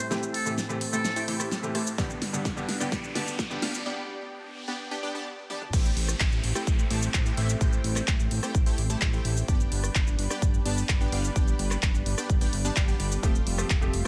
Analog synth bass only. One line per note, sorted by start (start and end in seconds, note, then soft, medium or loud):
5.73 5.91 A1 loud
5.97 6.15 A1 loud
6.20 6.29 A1 loud
6.32 6.41 A1 medium
6.44 6.53 A1 medium
6.67 6.85 A1 medium
6.91 7.09 A1 loud
7.14 7.32 A1 medium
7.37 7.55 A1 loud
7.61 7.79 A1 medium
7.84 8.02 A1 medium
8.08 8.17 A1 loud
8.20 8.29 A1 medium
8.31 8.40 A1 medium
8.55 8.73 A1 medium
8.78 8.96 A1 loud
9.02 9.20 A1 medium
9.25 9.43 A1 loud
9.48 9.66 G1 loud
9.72 9.90 G1 loud
9.95 10.04 G1 loud
10.07 10.16 G1 medium
10.19 10.28 G1 medium
10.42 10.60 G1 medium
10.66 10.84 G1 loud
10.89 11.07 G1 medium
11.12 11.30 G1 loud
11.36 11.54 G1 loud
11.59 11.77 G1 loud
11.83 11.92 G1 loud
11.94 12.03 G1 medium
12.06 12.15 G1 medium
12.30 12.48 G1 medium
12.53 12.71 G1 loud
12.76 12.94 G1 medium
13.00 13.18 G1 loud
13.23 13.41 F1 loud
13.47 13.65 F1 loud
13.70 13.79 F1 loud
13.82 13.91 F1 medium
13.94 14.03 F1 loud